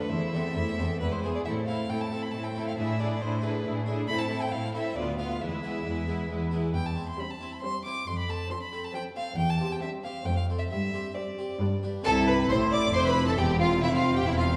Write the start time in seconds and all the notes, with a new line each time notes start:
Already playing: A3
0.00 B4
0.09 E2 A3 E4 C5 E5
0.33 E2 C4 E4 A4
0.55 E2 A3 E4 C5
0.78 E2 C4 E4 A4
1.00 E2 G#3 E4 B4
1.12 C5
1.23 E2 B3 E4 G#4
1.35 D5
1.45 A2 C4 E4 A4 E5
1.67 C4 E4 A4 F5
1.90 A2 C4 E4 A4 G5
2.01 A5
2.12 C4 E4 A4
2.22 B5
2.31 A2 C4 E4 A4 A5
2.44 G5
2.55 C4 E4 A4
2.67 F5
2.77 A2 D4 E4 G#4 E5
2.99 D4 E4 G#4 D5
3.20 A2 D4 E4 G#4 C5
3.41 D4 E4 G#4 B4
3.64 A2 D4 E4 G#4
3.86 D4 E4 G#4
4.08 A2 C4 E4 A4 B5
4.19 A5
4.30 C4 E4 A4
4.42 G5
4.52 A2 C4 E4 A4 F5
4.73 C4 E4 A4 E5
4.96 D2 B3 F4 B4 D5
5.18 B3 F4 B4 F5
5.40 E2 G#3 E4 B4 E5
5.62 G#3 B3 E4 G#4 B4
5.84 E2 G#3 E4 B4
6.07 G#3 B3 E4 G#4 B4
6.29 E2 G#3 E4 B4
6.51 G#3 B3 E4 G#4 B4
6.73 E2 G5
6.86 A5
6.95 C4 E4 C5
7.09 C6
7.18 G3 C4 C5 B5
7.30 A5
7.41 C4 E4 C5
7.53 B5
7.62 G3 C4 C5 C6
7.85 C4 E4 C5 D6
8.07 F2 C6
8.19 B5
8.28 C4 A4 C5 A5
8.50 F3 C4 C5 C6
8.62 B5
8.72 C4 A4 C5
8.85 A5
8.94 F3 C4 C5 G5
9.16 C4 A4 C5 F5
9.38 E2 G5
9.50 A5
9.60 C4 G4 C5
9.72 G5
9.81 G3 C4 C5 E5
10.03 C4 G4 C5 F5
10.25 F2 A3 C4 C5 G5
10.37 F5
10.50 C4 A4 C5
10.59 E5
10.69 G2 E5
10.93 C4 G4 C5
11.15 G3 C4 C5 D5
11.38 C4 G4 C5
11.60 G2 G3 D4 B4
11.83 D4 G4 B4
12.01 C4 E4 G4 A4 A5
12.06 C2 C3 E4 A4
12.27 B4 B5
12.49 A1 A2 E4 C5 C6
12.72 D5 D6
12.93 F1 F2 E4 C5 C6
13.05 B4 B5
13.27 A4 A5
13.32 C4 E4
13.37 E1 E2 C4 G4 G5
13.60 F4 F5
13.81 F1 F2 C4 E4 E5
13.93 F4 F5
14.15 G4 G5
14.25 E1 E2 C4 E4 E5
14.37 F4 F5